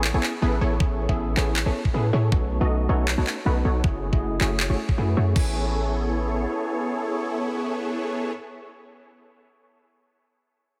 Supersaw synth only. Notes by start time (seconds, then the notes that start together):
Already playing: B3 E4 G#4 A4 C#5
0.14 B3 E4 G#4 A4 C#5
0.42 B3 E4 G#4 A4 B4
0.61 B3 E4 G#4 A4 C#5
0.80 B3 E4 G#4 A4 C#5
1.09 B3 E4 G#4 A4 E5
1.37 B3 E4 G#4 A4 C#5
1.66 B3 E4 G#4 A4 C#5
1.94 B3 E4 G#4 A4 B4
2.13 B3 E4 G#4 A4 C#5
2.32 B3 D#4 F#4 A4 C#5
2.61 B3 D#4 F#4 A4 D#5
2.89 B3 D#4 F#4 A4 C#5
3.18 B3 D#4 F#4 A4 C#5
3.46 B3 D#4 F#4 A4 B4
3.65 B3 D#4 F#4 A4 C#5
3.84 A3 E4 F#4 G#4 C#5
4.13 A3 E4 F#4 G#4 D#5
4.41 A3 E4 F#4 G#4 C#5
4.70 A3 E4 F#4 G#4 C#5
4.98 A3 E4 F#4 G#4 B4
5.17 A3 E4 F#4 G#4 C#5
5.36 B3 E4 G#4 A4 C#5